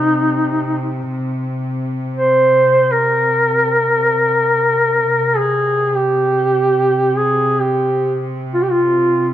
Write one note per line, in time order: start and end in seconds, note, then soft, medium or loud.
0.00 5.09 C3 soft
0.00 1.05 D#4 medium
2.17 2.93 C5 medium
2.92 5.39 A#4 medium
5.10 9.34 C3 soft
5.37 5.97 G#4 medium
5.96 7.19 G4 medium
7.17 7.62 G#4 medium
7.61 8.20 G4 medium
8.54 8.64 F4 medium
8.62 8.72 G4 medium
8.71 9.34 F4 medium